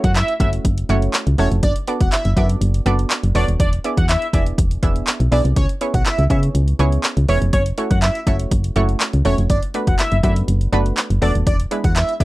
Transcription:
Already playing: A3 C#4 E4 F#4 C#5
0.04 F#2 F#5, kick, closed hi-hat
0.15 E5, clap, closed hi-hat
0.28 closed hi-hat
0.40 F#1 A3 C#4 E4 F#4 E5, kick, closed hi-hat
0.53 closed hi-hat
0.65 F#1, kick, closed hi-hat
0.78 closed hi-hat
0.89 F#1 A3 C#4 E4 F#4 C#5, closed hi-hat
1.02 closed hi-hat
1.14 clap, closed hi-hat
1.27 C#2, closed hi-hat
1.38 E1 A3 C#4 E4 F#4 A4 C#5, open hi-hat
1.51 F1, closed hi-hat
1.63 F#1 D5, kick, closed hi-hat
1.76 closed hi-hat
1.87 B3 D4 F#4 A4 D5, closed hi-hat
2.00 E1 F#5, kick, closed hi-hat
2.12 E5, clap, closed hi-hat
2.25 F#1, closed hi-hat
2.37 F#2 B3 D4 F#4 A4 D5 E5, kick, closed hi-hat
2.49 closed hi-hat
2.61 F#1, closed hi-hat
2.74 closed hi-hat
2.86 F#1 B3 D4 F#4 A4 D5, closed hi-hat
2.99 closed hi-hat
3.10 clap, closed hi-hat
3.23 F#1, closed hi-hat
3.35 E1 B3 D4 F#4 A4 C#5 D5, open hi-hat
3.48 D#1, closed hi-hat
3.60 E1 D5, kick, closed hi-hat
3.73 closed hi-hat
3.84 B3 D4 E4 G#4 D5, closed hi-hat
3.97 E2 F#5, kick, closed hi-hat
4.09 E5, clap, closed hi-hat
4.22 closed hi-hat
4.33 E1 B3 D4 E4 G#4 D5 E5, kick, closed hi-hat
4.46 closed hi-hat
4.58 E1, kick, closed hi-hat
4.71 closed hi-hat
4.83 E1 B3 D4 E4 G#4 E5, kick, closed hi-hat
4.96 closed hi-hat
5.07 clap, closed hi-hat
5.20 B1, closed hi-hat
5.32 B1 B3 D4 E4 G#4 D5, open hi-hat
5.45 C2, closed hi-hat
5.56 C#2 C#5, kick, closed hi-hat
5.69 closed hi-hat
5.81 B3 C#4 E4 G#4 C#5, closed hi-hat
5.94 B1 F#5, kick, closed hi-hat
6.06 E5, clap, closed hi-hat
6.19 C#2, closed hi-hat
6.30 C#3 B3 C#4 E4 G#4 C#5 E5, kick, closed hi-hat
6.43 closed hi-hat
6.55 C#2, closed hi-hat
6.68 closed hi-hat
6.79 C#2 B3 C#4 E4 G#4 C#5, closed hi-hat
6.92 closed hi-hat
7.04 clap, closed hi-hat
7.17 C#2, closed hi-hat
7.28 E1 B3 C#4 E4 G#4 C#5, open hi-hat
7.42 F1, closed hi-hat
7.53 F#1 C#5, kick, closed hi-hat
7.66 closed hi-hat
7.78 A3 C#4 E4 F#4 C#5, closed hi-hat
7.91 F#2 F#5, kick, closed hi-hat
8.02 E5, clap, closed hi-hat
8.15 closed hi-hat
8.27 F#1 A3 C#4 E4 F#4 C#5 E5, kick, closed hi-hat
8.39 closed hi-hat
8.51 F#1, kick, closed hi-hat
8.64 closed hi-hat
8.76 F#1 A3 C#4 E4 F#4 C#5, closed hi-hat
8.89 closed hi-hat
9.00 clap, closed hi-hat
9.13 C#2, closed hi-hat
9.25 E1 A3 C#4 E4 F#4 C#5, open hi-hat
9.38 F1, closed hi-hat
9.50 F#1 D5, kick, closed hi-hat
9.63 closed hi-hat
9.74 A3 B3 D4 F#4 B4, closed hi-hat
9.87 E1 F#5, kick, closed hi-hat
9.99 E5, clap, closed hi-hat
10.12 F#1, closed hi-hat
10.23 F#2 A3 B3 D4 F#4 B4 E5, kick, closed hi-hat
10.36 closed hi-hat
10.48 F#1, closed hi-hat
10.61 closed hi-hat
10.72 F#1 A3 B3 D4 F#4 B4, closed hi-hat
10.86 closed hi-hat
10.97 clap, closed hi-hat
11.10 F#1, closed hi-hat
11.22 E1 A3 B3 D4 F#4 A4 D5, open hi-hat
11.35 D#1, closed hi-hat
11.47 E1 D5, kick, closed hi-hat
11.60 closed hi-hat
11.71 G#3 B3 D4 E4 B4, closed hi-hat
11.84 E2 F#5, kick, closed hi-hat
11.96 E5, clap, closed hi-hat
12.09 closed hi-hat
12.20 E1 G#3 B3 D4 E4 D5 E5, kick, closed hi-hat

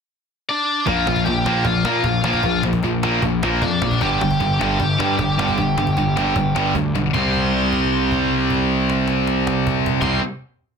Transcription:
0.49 D4 D5
0.87 A#1 A#2 F3 A#3 F4 F5, cajon bass
1.07 A#1 A#2 F3, cajon slap
1.16 cajon bass
1.25 A#1 A#2 F3 G4 G5, cajon bass
1.46 A#1 A#2 F3 A#3, cajon slap
1.65 A#1 A#2 F3 F4 F5, cajon bass
1.84 A#2 F3 A#3, cajon slap
2.04 A#1 A#2 F3, cajon bass
2.23 A#1 A#2 F3 A#3 F4 F5, cajon slap
2.33 cajon bass
2.43 A#1 A#2 F3, cajon bass
2.63 A#1 A#2 F3, cajon slap
2.73 cajon bass
2.83 A#1 A#2 F3, cajon bass
3.03 A#2 F3 A#3, cajon slap
3.22 A#1 A#2 F3, cajon bass
3.43 A#1 A#2 F3 A#3, cajon slap
3.62 F2 A#2 F3 D4 D5, cajon bass
3.82 A#1 A#2 F3, cajon slap
3.91 cajon bass
4.01 G1 G2 D3 G3 G4 G5, cajon bass
4.20 G1 G2 D3, cajon slap
4.31 cajon bass
4.40 G1 G2 D3, cajon bass
4.60 G1 G2 D3 G3 G4 G5, cajon slap
4.79 G1 G2 D3, cajon bass
4.98 G2 D3 G3, cajon slap
5.19 G1 G2 D3, cajon bass
5.38 G1 G2 D3 G3, cajon slap
5.48 cajon bass
5.58 G1 G2 D3, cajon bass
5.77 G1 G2 D3, cajon slap
5.87 cajon bass
5.96 G1 G2 D3, cajon bass
6.16 G2 D3 G3, cajon slap
6.36 G1 G2 D3, cajon bass
6.55 G1 G2 D3 G3, cajon slap
6.75 D2 G2 D3, cajon bass, cajon slap
6.94 B1 G2 D3, cajon slap
7.14 C2 C3 G3 C6, cajon bass
7.18 C4
7.34 cajon bass
7.73 cajon bass
8.11 cajon bass
8.50 cajon bass
8.90 cajon slap
9.08 cajon slap
9.27 cajon slap
9.47 cajon slap
9.67 cajon bass
9.86 cajon bass
10.00 C2 C3 G3 C6, cajon bass, cajon slap
10.04 C4

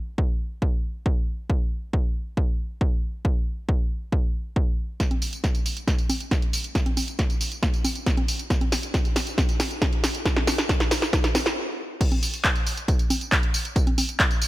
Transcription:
0.18 kick
0.62 kick
1.06 kick
1.50 kick
1.93 kick
2.37 kick
2.81 kick
3.25 kick
3.69 kick
4.12 kick
4.56 kick
5.00 kick, snare, closed hi-hat, tambourine
5.11 closed hi-hat, high conga
5.22 open hi-hat, tambourine
5.33 closed hi-hat, tambourine
5.44 kick, snare, closed hi-hat, tambourine
5.55 closed hi-hat, tambourine
5.66 open hi-hat, tambourine
5.77 closed hi-hat, tambourine
5.88 kick, snare, closed hi-hat, tambourine
5.99 closed hi-hat, tambourine
6.09 open hi-hat, tambourine, high conga
6.20 closed hi-hat, tambourine
6.31 kick, snare, closed hi-hat, tambourine
6.42 closed hi-hat
6.53 open hi-hat, tambourine
6.64 closed hi-hat, tambourine
6.75 kick, snare, closed hi-hat, tambourine
6.86 closed hi-hat, high conga
6.97 open hi-hat, tambourine, high conga
7.08 closed hi-hat, tambourine
7.19 kick, snare, closed hi-hat, tambourine
7.30 closed hi-hat, tambourine
7.41 open hi-hat, tambourine
7.52 closed hi-hat, tambourine
7.63 kick, snare, closed hi-hat, tambourine
7.74 closed hi-hat, tambourine
7.84 open hi-hat, tambourine, high conga
7.96 closed hi-hat, tambourine
8.06 kick, snare, closed hi-hat, tambourine
8.17 closed hi-hat, high conga
8.28 open hi-hat, tambourine
8.39 closed hi-hat, tambourine
8.50 kick, snare, closed hi-hat, tambourine
8.61 closed hi-hat, high conga
8.72 snare, open hi-hat, tambourine
8.83 closed hi-hat, tambourine
8.94 kick, snare, closed hi-hat, tambourine
9.05 closed hi-hat, tambourine
9.16 snare, open hi-hat, tambourine
9.27 closed hi-hat, tambourine
9.38 kick, snare, closed hi-hat, tambourine
9.49 closed hi-hat, tambourine
9.60 snare, open hi-hat, tambourine, high conga
9.71 closed hi-hat, tambourine
9.82 kick, snare, closed hi-hat, tambourine
9.93 closed hi-hat
10.04 snare, open hi-hat, tambourine
10.15 closed hi-hat, tambourine
10.25 kick, snare, closed hi-hat, tambourine
10.37 snare, closed hi-hat, high conga
10.47 snare, open hi-hat, tambourine, high conga
10.58 snare, closed hi-hat, tambourine
10.69 kick, snare, closed hi-hat, tambourine
10.80 snare, closed hi-hat, tambourine
10.91 snare, open hi-hat, tambourine
11.02 snare, closed hi-hat, tambourine
11.13 kick, snare, closed hi-hat, tambourine
11.24 snare, closed hi-hat, tambourine
11.35 snare, open hi-hat, tambourine, high conga
11.46 snare, closed hi-hat, tambourine
12.01 kick, closed hi-hat, crash, tambourine
12.12 closed hi-hat, high conga
12.23 open hi-hat, tambourine
12.34 closed hi-hat, tambourine
12.44 kick, clap, closed hi-hat, tambourine
12.56 closed hi-hat, tambourine
12.67 open hi-hat, tambourine
12.77 closed hi-hat, tambourine
12.88 kick, closed hi-hat, tambourine
12.99 closed hi-hat, tambourine
13.10 open hi-hat, tambourine, high conga
13.21 closed hi-hat, tambourine
13.32 kick, clap, closed hi-hat, tambourine
13.43 closed hi-hat
13.54 open hi-hat, tambourine
13.65 closed hi-hat, tambourine
13.76 kick, closed hi-hat, tambourine
13.87 closed hi-hat, high conga
13.98 open hi-hat, tambourine, high conga
14.09 closed hi-hat, tambourine
14.20 kick, clap, closed hi-hat, tambourine
14.31 closed hi-hat, tambourine
14.42 open hi-hat, tambourine

